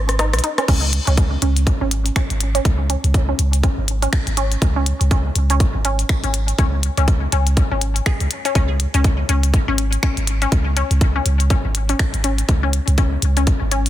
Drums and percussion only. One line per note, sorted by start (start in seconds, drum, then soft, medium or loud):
0.09 cross-stick medium
0.09 closed hi-hat soft
0.19 cross-stick medium
0.19 closed hi-hat medium
0.33 cross-stick medium
0.33 closed hi-hat soft
0.39 closed hi-hat medium
0.44 closed hi-hat medium
0.58 cross-stick medium
0.58 closed hi-hat soft
0.68 kick loud
0.68 closed hi-hat medium
0.68 crash loud
0.93 closed hi-hat loud
1.07 closed hi-hat soft
1.17 kick loud
1.17 closed hi-hat medium
1.42 closed hi-hat medium
1.56 closed hi-hat soft
1.67 kick loud
1.67 closed hi-hat medium
1.91 closed hi-hat medium
2.06 closed hi-hat soft
2.16 finger snap loud
2.16 kick loud
2.16 closed hi-hat medium
2.30 closed hi-hat medium
2.41 closed hi-hat loud
2.55 closed hi-hat soft
2.65 kick loud
2.65 closed hi-hat medium
2.90 closed hi-hat loud
3.04 closed hi-hat soft
3.14 kick loud
3.14 closed hi-hat medium
3.39 closed hi-hat medium
3.53 closed hi-hat soft
3.63 kick loud
3.63 closed hi-hat medium
3.88 closed hi-hat loud
4.02 closed hi-hat soft
4.13 finger snap loud
4.13 kick loud
4.13 closed hi-hat medium
4.27 closed hi-hat medium
4.37 closed hi-hat loud
4.52 closed hi-hat soft
4.62 kick loud
4.62 closed hi-hat medium
4.86 closed hi-hat loud
5.01 closed hi-hat soft
5.11 kick loud
5.11 closed hi-hat soft
5.36 closed hi-hat loud
5.50 closed hi-hat soft
5.60 kick loud
5.60 closed hi-hat medium
5.85 closed hi-hat loud
5.99 closed hi-hat soft
6.09 finger snap loud
6.09 kick loud
6.09 closed hi-hat medium
6.24 closed hi-hat soft
6.34 closed hi-hat loud
6.48 closed hi-hat soft
6.59 kick loud
6.59 closed hi-hat soft
6.83 closed hi-hat loud
6.97 closed hi-hat soft
7.08 kick loud
7.08 closed hi-hat soft
7.32 closed hi-hat loud
7.47 closed hi-hat soft
7.57 kick loud
7.57 closed hi-hat medium
7.81 closed hi-hat medium
7.96 closed hi-hat soft
8.06 finger snap loud
8.06 kick loud
8.06 closed hi-hat soft
8.20 closed hi-hat soft
8.31 closed hi-hat loud
8.45 closed hi-hat soft
8.55 kick loud
8.55 closed hi-hat medium
8.80 closed hi-hat medium
8.94 closed hi-hat soft
9.04 kick loud
9.04 closed hi-hat soft
9.29 closed hi-hat medium
9.43 closed hi-hat soft
9.54 kick loud
9.54 closed hi-hat medium
9.78 closed hi-hat loud
9.93 closed hi-hat soft
10.03 finger snap loud
10.03 kick loud
10.03 closed hi-hat medium
10.17 closed hi-hat soft
10.27 closed hi-hat loud
10.42 closed hi-hat soft
10.52 kick loud
10.52 closed hi-hat medium
10.77 closed hi-hat medium
10.91 closed hi-hat soft
11.01 kick loud
11.01 closed hi-hat medium
11.26 closed hi-hat medium
11.40 closed hi-hat soft
11.50 kick loud
11.50 closed hi-hat medium
11.75 closed hi-hat medium
11.89 closed hi-hat soft
11.99 finger snap loud
11.99 kick loud
11.99 closed hi-hat medium
12.14 closed hi-hat medium
12.24 closed hi-hat loud
12.38 closed hi-hat soft
12.49 kick loud
12.49 closed hi-hat medium
12.73 closed hi-hat medium
12.88 closed hi-hat soft
12.98 kick loud
12.98 closed hi-hat medium
13.22 closed hi-hat medium
13.37 closed hi-hat soft
13.47 kick loud
13.47 closed hi-hat medium
13.71 closed hi-hat medium
13.86 closed hi-hat soft